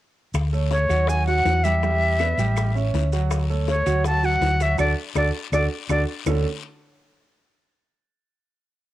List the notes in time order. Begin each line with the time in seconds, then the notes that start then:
0.34 D2, high bongo, long guiro, claves, maracas
0.53 A3 A4 C#5, maracas
0.71 C#5, high bongo, short guiro, maracas
0.89 D#2 F#3 F#4 F#5, high bongo, short guiro, claves, maracas
1.07 F#3 F#4 F#5 G#5, high bongo, long guiro, maracas
1.27 F#3 F#4 F#5, high bongo, maracas
1.45 E2, high bongo, low bongo, short guiro, claves, maracas
1.64 G3 G4 E5 G5, high bongo, short guiro, maracas
1.82 G3 G4 G5, high bongo, long guiro, maracas
2.01 maracas
2.19 B3 B4 D5, high bongo, short guiro, claves, maracas
2.38 A1 G3 G4 G5, high bongo, short guiro, maracas
2.56 high bongo, long guiro, claves, maracas
2.75 C#4 C#5 E5, high bongo, maracas
2.94 D2, high bongo, low bongo, short guiro, maracas
3.12 F#3 F#4 F#5, high bongo, short guiro, maracas
3.31 high bongo, long guiro, claves, maracas
3.50 A3 A4 C#5, maracas
3.68 C#5, high bongo, short guiro, maracas
3.86 D2 F#3 F#4 F#5, high bongo, short guiro, claves, maracas
4.04 F#3 F#4 F#5 A5, high bongo, long guiro, maracas
4.23 F#3 F#4 F#5, high bongo, maracas
4.41 D2, high bongo, low bongo, short guiro, claves, maracas
4.60 F#3 F#4 E5 F#5, high bongo, short guiro, maracas
4.78 D2 D4 F#4 A4 D5, high bongo, long guiro, claves, maracas
5.15 D2 D4 F#4 A4 D5, high bongo, long guiro, claves, maracas
5.52 D2 D4 F#4 A4 D5, high bongo, long guiro, claves, maracas
5.89 D2 D4 F#4 A4 D5, high bongo, long guiro, claves, maracas
6.26 D2 D3 A3 C#4 D4 F#4 A4, low bongo, claves, maracas